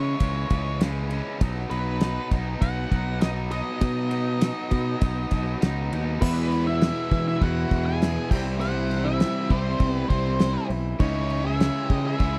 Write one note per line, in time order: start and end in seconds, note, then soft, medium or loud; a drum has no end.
0.00 0.14 C#3 medium
0.00 0.19 C#3 medium
0.00 0.19 E3 medium
0.00 0.20 G#3 loud
0.00 0.20 C#4 medium
0.00 0.78 C#5 medium
0.20 0.44 C#2 medium
0.20 0.50 C#3 medium
0.20 0.50 E3 medium
0.20 0.51 G#3 loud
0.20 0.52 C#4 medium
0.20 kick loud
0.20 ride medium
0.50 1.20 C#2 medium
0.50 0.81 C#3 medium
0.50 0.81 E3 medium
0.50 0.81 G#3 loud
0.50 0.83 C#4 medium
0.50 kick medium
0.50 ride medium
0.81 1.09 C#3 medium
0.81 1.11 E3 medium
0.81 1.11 G#3 medium
0.81 1.12 C#4 medium
0.81 snare loud
0.81 ride medium
1.10 1.39 C#3 medium
1.10 1.40 E3 medium
1.10 1.40 G#3 medium
1.10 1.41 C#4 loud
1.10 ride medium
1.41 1.64 B1 loud
1.41 1.70 B2 loud
1.41 1.71 F#3 medium
1.41 1.71 B3 loud
1.41 1.62 C4 medium
1.41 1.71 D#4 loud
1.41 1.62 E4 medium
1.41 1.62 G4 medium
1.41 1.62 E5 medium
1.41 kick loud
1.41 ride medium
1.61 3.79 B3 medium
1.61 3.79 D#4 medium
1.61 3.80 F#4 medium
1.61 3.79 D#5 medium
1.70 2.17 B1 medium
1.70 2.02 B2 medium
1.70 2.02 F#3 medium
1.70 2.02 B3 loud
1.70 2.04 D#4 medium
1.70 2.27 B4 loud
1.70 ride medium
2.01 2.31 B2 medium
2.01 2.32 F#3 medium
2.01 2.32 B3 medium
2.01 2.33 D#4 loud
2.01 snare loud
2.01 ride medium
2.31 2.55 B1 medium
2.31 2.60 B2 medium
2.31 2.62 F#3 medium
2.31 2.62 B3 medium
2.31 2.62 D#4 loud
2.31 kick medium
2.31 ride medium
2.61 2.85 B1 medium
2.61 2.88 B2 medium
2.61 2.90 F#3 medium
2.61 2.90 B3 loud
2.61 2.90 D#4 medium
2.61 3.18 F#5 loud
2.61 kick loud
2.61 ride medium
2.89 3.61 B1 medium
2.89 3.20 B2 medium
2.89 3.21 F#3 loud
2.89 3.22 B3 loud
2.89 3.22 D#4 medium
2.89 kick medium
2.89 ride medium
3.21 3.50 B2 medium
3.21 3.52 F#3 loud
3.21 3.52 B3 medium
3.21 3.53 D#4 loud
3.21 3.30 D#5 medium
3.21 snare loud
3.21 ride medium
3.51 3.80 B2 medium
3.51 3.80 F#3 medium
3.51 3.80 B3 medium
3.51 3.81 D#4 medium
3.51 5.58 D#5 medium
3.51 ride medium
3.81 4.09 B2 loud
3.81 4.50 B2 loud
3.81 4.09 F#3 loud
3.81 4.10 B3 loud
3.81 6.20 B3 medium
3.81 6.20 D#4 medium
3.81 4.11 D#4 loud
3.81 6.19 F#4 medium
3.81 6.20 D#5 medium
3.81 kick loud
3.81 ride medium
4.10 4.38 B2 medium
4.10 4.39 F#3 medium
4.10 4.39 B3 medium
4.10 4.40 D#4 loud
4.10 ride medium
4.39 4.69 B2 medium
4.39 4.69 F#3 medium
4.39 4.70 B3 medium
4.39 4.70 D#4 loud
4.39 snare loud
4.39 ride loud
4.70 5.00 B2 medium
4.70 4.94 B2 loud
4.70 5.01 F#3 medium
4.70 5.01 B3 medium
4.70 5.02 D#4 loud
4.70 kick medium
4.70 ride medium
5.01 5.25 B1 loud
5.01 5.30 B2 medium
5.01 5.31 F#3 medium
5.01 5.32 B3 loud
5.01 5.32 D#4 loud
5.01 kick loud
5.01 ride medium
5.31 5.54 B1 medium
5.31 5.59 B2 medium
5.31 5.60 F#3 medium
5.31 5.60 B3 medium
5.31 5.61 D#4 medium
5.31 kick medium
5.31 ride medium
5.60 5.89 C#2 medium
5.60 5.90 B2 medium
5.60 5.92 F#3 medium
5.60 5.92 B3 medium
5.60 5.93 D#4 loud
5.60 snare loud
5.60 ride medium
5.92 6.19 D#2 medium
5.92 6.20 B2 medium
5.92 6.21 F#3 medium
5.92 6.21 B3 medium
5.92 6.21 D#4 medium
5.92 ride medium
6.21 6.90 E2 loud
6.21 8.30 E2 loud
6.21 8.30 B2 medium
6.21 7.41 E3 loud
6.21 7.41 G#3 loud
6.21 6.63 B3 medium
6.21 8.29 B3 medium
6.21 7.41 B3 loud
6.21 8.29 F#4 medium
6.21 8.29 G#4 medium
6.21 6.63 B4 loud
6.21 8.29 E5 medium
6.21 kick loud
6.21 crash loud
6.21 crash medium
6.25 7.45 E4 loud
6.52 crash medium
6.67 7.24 E4 medium
6.67 7.27 E5 medium
6.81 snare loud
6.81 crash medium
7.11 7.34 E3 loud
7.11 kick medium
7.11 crash medium
7.28 7.42 E4 medium
7.28 7.43 E5 medium
7.41 7.64 E2 medium
7.41 8.33 E3 medium
7.41 8.30 G#3 medium
7.41 8.30 B3 medium
7.41 8.36 E4 medium
7.41 7.85 F#4 medium
7.41 7.84 F#5 loud
7.41 kick loud
7.41 crash medium
7.71 8.17 E2 medium
7.71 kick medium
7.71 crash medium
7.86 8.29 G#4 medium
7.86 8.28 G#5 loud
8.02 snare loud
8.02 crash medium
8.31 9.23 C2 loud
8.31 9.50 C3 medium
8.31 9.52 E3 loud
8.31 9.51 G3 loud
8.31 10.97 C4 medium
8.31 10.98 E4 medium
8.31 10.98 G4 medium
8.31 8.41 G4 medium
8.31 10.98 E5 medium
8.31 8.39 G5 loud
8.31 kick loud
8.31 crash loud
8.35 9.49 C4 loud
8.35 9.49 E4 loud
8.60 9.02 C5 medium
8.60 9.07 F#5 loud
8.60 crash medium
8.91 crash medium
9.04 9.47 E4 medium
9.04 9.52 E5 loud
9.20 snare loud
9.20 crash medium
9.49 9.73 C2 medium
9.49 10.70 C3 medium
9.49 10.99 E3 medium
9.49 10.69 G3 medium
9.49 9.90 C4 medium
9.49 10.69 C4 medium
9.49 11.03 E4 medium
9.49 9.95 C5 medium
9.49 kick medium
9.49 crash medium
9.80 10.03 C2 medium
9.80 kick loud
9.80 crash medium
9.90 10.06 B3 medium
9.95 10.08 B4 medium
10.09 10.56 C2 medium
10.09 10.65 C4 medium
10.09 10.66 C5 medium
10.09 kick medium
10.09 crash medium
10.39 snare loud
10.39 crash medium
10.70 10.93 B1 medium
10.70 crash medium
10.98 11.69 C#2 loud
10.98 12.17 C#3 medium
10.98 12.39 E3 medium
10.98 12.19 G#3 medium
10.98 12.39 C#4 medium
10.98 11.42 D#4 medium
10.98 12.39 G#4 medium
10.98 12.39 C#5 medium
10.98 11.46 C#5 medium
10.98 kick loud
10.98 crash medium
11.02 12.21 C#4 loud
11.02 12.22 E4 loud
11.30 crash medium
11.44 11.85 G#4 medium
11.44 11.91 E5 medium
11.60 snare loud
11.60 crash medium
11.85 12.01 G4 medium
11.90 12.13 C#3 medium
11.90 12.06 D#5 medium
11.90 kick loud
11.90 crash medium
12.05 12.39 G#4 medium
12.05 12.39 E5 medium
12.19 12.39 C#2 medium
12.19 12.39 C#3 medium
12.19 12.39 G#3 medium
12.19 12.39 C#4 medium
12.19 12.39 E4 medium
12.19 kick loud
12.19 crash medium